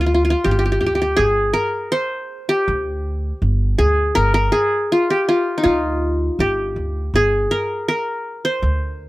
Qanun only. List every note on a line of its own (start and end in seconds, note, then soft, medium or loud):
0.00 0.06 F4 medium
0.00 0.44 G4 medium
0.06 0.14 F4 medium
0.14 0.24 F4 medium
0.25 0.30 F4 medium
0.30 1.65 F4 medium
0.44 0.51 G4 medium
0.51 0.58 G4 medium
0.59 0.65 G4 medium
0.66 0.71 G4 medium
0.72 0.80 G4 medium
0.81 0.86 G4 medium
0.86 0.95 G4 medium
0.95 1.01 G4 medium
1.02 1.23 G4 medium
1.17 2.38 G#4 loud
1.53 2.67 A#4 medium
1.92 2.97 C5 loud
2.49 3.84 G4 medium
3.78 4.52 G#4 medium
4.15 4.34 A#4 loud
4.34 5.47 A#4 medium
4.52 5.16 G#4 medium
4.92 5.28 F4 medium
5.10 6.36 G4 medium
5.29 5.63 F4 medium
5.58 7.02 D#4 medium
5.64 6.98 F4 medium
6.40 7.22 G4 medium
7.16 8.37 G#4 loud
7.51 7.88 A#4 medium
7.88 9.02 A#4 medium
8.45 9.09 C5 medium